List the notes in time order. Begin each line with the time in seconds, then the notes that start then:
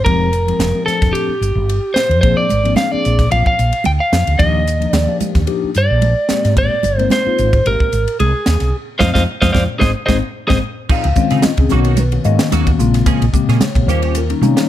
0.05 F1 F3 G#3 C4 D#4 G4 A#4, kick, ride
0.33 hi-hat pedal, ride
0.47 F3 G#3 C4 D#4 G4, ride
0.59 F1, snare, ride
0.74 F3 G#3 C4 D#4 G4
0.86 F3 A3 C4 D4 A4, muted fretless electric bass stroke, snare, hi-hat pedal, ride
1.02 F1, kick, snare, ride
1.13 G4, ride
1.28 muted fretless electric bass stroke
1.41 G1, hi-hat pedal, ride
1.55 G1
1.69 ride
1.94 C5, muted fretless electric bass stroke, snare, hi-hat pedal, ride
2.09 F2, ride
2.21 A#1 F3 A#3 C4 D4 G#4 C5, kick, ride, muted conga
2.37 D5
2.49 G#1, hi-hat pedal, ride, high conga
2.63 F3 A#3 C4 D4 G#4, ride
2.76 F5, snare, ride, high conga
2.91 F3 A#3 C4 D4 G#4 D5, muted fretless electric bass stroke
3.03 A#1, hi-hat pedal, ride, muted conga
3.19 kick, snare, ride
3.30 A#1 F3 A#3 C4 D4 F4 F5, ride, muted conga
3.46 F5, muted fretless electric bass stroke, kick
3.58 A#1 G#4, hi-hat pedal, ride, muted conga
3.72 ride
3.84 D2 G5, ride, high conga
4.00 F5
4.12 F2, snare, hi-hat pedal, ride
4.27 D2, ride
4.38 D#2 F3 A#3 D4 D#4 G4 D#5, kick, ride, muted conga
4.67 hi-hat pedal, ride
4.80 F3 A#3 D4 D#4 A#4, ride
4.92 D#2 D5, snare, ride, high conga
5.06 F3 A#3 D4 D#4 G4
5.20 muted fretless electric bass stroke, hi-hat pedal, ride, muted conga, high conga
5.35 D#2, kick, snare, ride
5.46 F3 A#3 D4 D#4 G4, ride, muted conga
5.64 muted fretless electric bass stroke
5.74 G2 D#4 A#4 D5, hi-hat pedal, ride, muted conga
5.91 A#1
6.01 ride, high conga
6.28 G#3 A#3 C4 D#4 G4, muted fretless electric bass stroke, snare, hi-hat pedal, ride
6.45 G#2, snare, ride
6.57 G#1 D5, kick, ride, muted conga
6.83 G1, hi-hat pedal, ride, high conga
6.97 G#3 A#3 C4 D#4 A#4, ride
7.10 C5, snare, ride, high conga
7.25 G#3 A#3 C4 D#4 F4, muted fretless electric bass stroke
7.38 G#1, hi-hat pedal, ride, muted conga
7.53 kick, ride
7.65 G#1 G#3 A#3 C4 D#4 G4 A#4, ride, muted conga
7.80 muted fretless electric bass stroke, kick
7.92 G#1 D#4 G4, hi-hat pedal, ride, muted conga
8.08 ride
8.20 C2 G#4, ride, high conga
8.46 D#2, snare, hi-hat pedal, ride
8.60 C2, snare, ride
8.99 F2 C4 D#4 F4 C5 D#5 F5, kick, snare, high conga
9.14 F2 C4 D#4 F4 C5 D#5 F5, kick, snare, high conga
9.42 F2 C4 D#4 F4 C5 D#5 F5, kick, snare, high conga
9.52 F2 C4 D4 F4 C5 D5 F5, kick, snare, high conga
9.79 G#1 G#3 C4 D#4 G#4 C5 D#5, kick, snare, high conga
10.06 G#1 G#3 C4 D#4 G#4 C5 D#5, kick, snare, high conga
10.48 G#1 G#3 C4 D#4 G#4 C5 D#5, kick, snare, high conga
10.89 F3 C4 D#4 G#4 F5, muted fretless electric bass stroke, kick, crash, muted conga
11.04 C#2, ride
11.15 D#3 G#3 C4 C#4 F4, muted clean electric guitar stroke, kick, hi-hat pedal
11.30 C#3 C4 D#4 G#4, snare, ride
11.42 D#5, muted clean electric guitar stroke, muted fretless electric bass stroke, snare, hi-hat pedal, ride, muted conga, high conga
11.57 C#2 D#3 G#3 C4 C#4 G#4, muted clean electric guitar stroke, kick, ride
11.69 B1 D#3 F#3 A#3 B3 C#4 D#4 F#4 C#5, snare, hi-hat pedal
11.84 A#3 D#4 F#4, ride
11.97 B4, hi-hat pedal, ride, muted conga, high conga
12.12 D#3 A#3 B3 C#4 F#4, muted clean electric guitar stroke, ride
12.24 G#2 D#3 A#3 B3 C#4 F#4 D#5, muted clean electric guitar stroke, hi-hat pedal, muted conga
12.39 muted clean electric guitar stroke, snare, ride
12.52 D#2 F#3 A#3 D#4 F#4, snare, hi-hat pedal, ride, high conga
12.67 kick, ride
12.78 A#1 C#3 G#3 A#3 C4 F4, muted clean electric guitar stroke, hi-hat pedal
12.94 muted clean electric guitar stroke, snare, ride
13.06 F3 A#3 C#4 G#4 D#5, kick, hi-hat pedal, ride, muted conga
13.22 A#1, ride
13.32 C#3 G#3 A#3 C4 G4, muted clean electric guitar stroke, kick, hi-hat pedal
13.48 A#2 A#3 C#4 G#4, snare, ride
13.61 C#5, muted fretless electric bass stroke, muted clean electric guitar stroke, snare, hi-hat pedal, ride, muted conga, high conga
13.75 A#1 C#3 G#3 A#3 C4 G4, muted clean electric guitar stroke, kick, ride
13.87 D#2 D#3 G3 A#3 C#4 F4 G4 C5, snare, hi-hat pedal
14.02 C#4 G4, ride
14.15 A#4, hi-hat pedal, ride, muted conga
14.29 D#3 G3 A#3 C#4 D#4, muted clean electric guitar stroke, ride
14.41 C3 D#3 G3 A#3 C#4 D#4 C#5, muted clean electric guitar stroke, hi-hat pedal, muted conga, high conga
14.57 muted clean electric guitar stroke, snare, ride